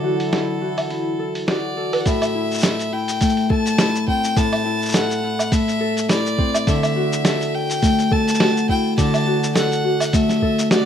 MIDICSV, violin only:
0, 0, Header, 1, 2, 480
1, 0, Start_track
1, 0, Tempo, 576923
1, 1712, Time_signature, 4, 2, 24, 8
1, 9030, End_track
2, 0, Start_track
2, 0, Title_t, "Violin"
2, 0, Program_c, 0, 40
2, 0, Note_on_c, 0, 69, 88
2, 1198, Note_off_c, 0, 69, 0
2, 1238, Note_on_c, 0, 74, 86
2, 1663, Note_on_c, 0, 78, 65
2, 1676, Note_off_c, 0, 74, 0
2, 1718, Note_on_c, 0, 76, 106
2, 1730, Note_off_c, 0, 78, 0
2, 2435, Note_on_c, 0, 79, 108
2, 2447, Note_off_c, 0, 76, 0
2, 2913, Note_on_c, 0, 81, 115
2, 2926, Note_off_c, 0, 79, 0
2, 3393, Note_off_c, 0, 81, 0
2, 3398, Note_on_c, 0, 79, 107
2, 3636, Note_on_c, 0, 81, 112
2, 3649, Note_off_c, 0, 79, 0
2, 4119, Note_on_c, 0, 78, 99
2, 4131, Note_off_c, 0, 81, 0
2, 4598, Note_on_c, 0, 76, 108
2, 4611, Note_off_c, 0, 78, 0
2, 5072, Note_off_c, 0, 76, 0
2, 5077, Note_on_c, 0, 74, 106
2, 5555, Note_on_c, 0, 76, 104
2, 5568, Note_off_c, 0, 74, 0
2, 6278, Note_on_c, 0, 79, 113
2, 6291, Note_off_c, 0, 76, 0
2, 6759, Note_on_c, 0, 81, 112
2, 6771, Note_off_c, 0, 79, 0
2, 7232, Note_off_c, 0, 81, 0
2, 7237, Note_on_c, 0, 79, 98
2, 7458, Note_off_c, 0, 79, 0
2, 7475, Note_on_c, 0, 81, 108
2, 7920, Note_off_c, 0, 81, 0
2, 7955, Note_on_c, 0, 78, 96
2, 8437, Note_on_c, 0, 76, 107
2, 8450, Note_off_c, 0, 78, 0
2, 8915, Note_off_c, 0, 76, 0
2, 8919, Note_on_c, 0, 74, 101
2, 9030, Note_off_c, 0, 74, 0
2, 9030, End_track
0, 0, End_of_file